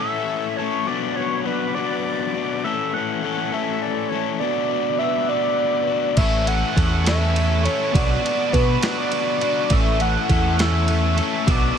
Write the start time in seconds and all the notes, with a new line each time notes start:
Already playing: A4 E5 G#5 C#6
0.00 E3 A3 C#4 A4 E5
0.57 A4 C#5
0.61 A3 C#4
0.86 F#3 B3 D4 F#4 B4 D5 F#5 D6
1.16 B3 D4 F#4 C#5
1.45 F#3 B3 D4 F#4 B4
1.74 B3 D4 F#4 D5
1.79 F#3
2.34 B3 D4 F#4
2.64 E3 A3 C#4 A4 E5 G#5 C#6
2.94 A3 C#4 A4 F#5
3.23 E3 A3 C#4 A4
3.52 E3 A3 C#4 A4 E5
3.82 D5
4.09 A4 C#5
4.14 A3 C#4
4.40 B3 D4 B4 D5 F#5 D6
4.44 F#4
4.69 D4 F#4
4.99 B3 D4 F#4 E5
5.03 E6
5.29 B3 D4 F#4 D5 D6
5.87 D4 F#4
6.16 A1 A2 E3 A3 C#4 A4 E5 G#5 C#6 E6, kick, crash
6.20 E4
6.46 A3 C#4 A4 F#5 F#6, ride
6.76 E2 E3 A3 C#4 A4, kick, ride
7.04 A2 E3 A3 C#4 E4 A4 E6, snare, ride
7.08 E5
7.34 E3 A3 C#4 E4, ride
7.63 A3 C#4 E4 A4 C#5 C#6, ride
7.92 B1 B2 F#3 B3 D4 F#4 B4 D5 F#5 D6, kick, ride
8.22 D4 F#4, ride
8.52 B2 B3 D4 F#4 B4 B5, kick, ride
8.82 B2 F#3 B3 D4 F#4 D6, snare, ride
8.86 D5
9.11 F#3 B3 D4 F#4, ride
9.41 B3 D4 F#4, ride
9.69 A1 A2 E3 A3 C#4 A4 E5 G#5 C#6 E6, kick, ride
9.75 E5
9.98 A3 C#4 A4 F#5 F#6, ride
10.29 E2 E3 A3 C#4 A4, kick, ride
10.58 A2 E3 A3 C#4 A4 E5 E6, snare, ride
10.85 E3 A3 C#4 A4, ride
11.17 A3 C#4 A4 E6, ride
11.22 E5
11.46 B1 B2 F#3 B3 D4 F#4 B4 D5 F#5 D6, kick, ride
11.51 D5